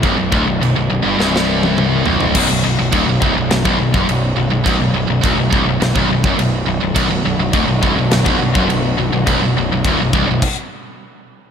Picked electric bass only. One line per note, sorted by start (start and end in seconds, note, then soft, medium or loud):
0.04 0.17 B0 medium
0.18 0.31 B0 medium
0.33 0.46 D1 medium
0.48 0.60 B0 medium
0.62 0.75 B0 medium
0.76 0.89 B0 medium
0.91 1.04 B0 medium
1.04 1.18 G1 medium
1.19 2.02 C1 medium
2.07 2.33 B0 medium
2.35 2.48 B0 medium
2.51 2.63 B0 medium
2.65 2.78 B0 medium
2.80 2.92 B0 medium
2.93 3.06 D1 loud
3.09 3.21 B0 medium
3.22 3.35 C1 medium
3.37 3.50 B0 medium
3.51 3.64 B0 medium
3.65 3.78 B0 medium
3.79 3.92 B0 medium
3.94 4.07 F#1 medium
4.08 4.34 B0 medium
4.37 4.50 B0 medium
4.51 4.64 B0 medium
4.66 4.79 B0 loud
4.79 4.91 B0 medium
4.92 5.06 B0 medium
5.07 5.21 B0 medium
5.23 5.35 D1 loud
5.35 5.50 B0 medium
5.53 5.64 C1 loud
5.65 5.79 B0 medium
5.80 5.93 B0 medium
5.96 6.09 B0 medium
6.09 6.23 B0 medium
6.24 6.37 F#1 loud
6.37 6.65 B0 medium
6.67 6.80 B0 medium
6.82 6.95 B0 medium
6.96 7.09 B0 loud
7.10 7.23 B0 medium
7.25 7.37 B0 medium
7.38 7.52 B0 medium
7.54 7.67 D1 loud
7.67 7.81 B0 medium
7.83 7.95 C1 medium
7.96 8.10 B0 medium
8.11 8.25 B0 medium
8.26 8.39 B0 medium
8.40 8.53 B0 medium
8.55 8.68 F#1 loud
8.69 8.96 B0 medium
8.97 9.11 B0 medium
9.14 9.26 B0 medium
9.27 9.40 B0 medium
9.42 9.55 B0 medium
9.57 9.70 B0 medium
9.72 9.84 B0 medium
9.85 9.98 D1 loud
10.02 10.13 B0 medium
10.14 10.27 C1 medium
10.29 10.42 B0 medium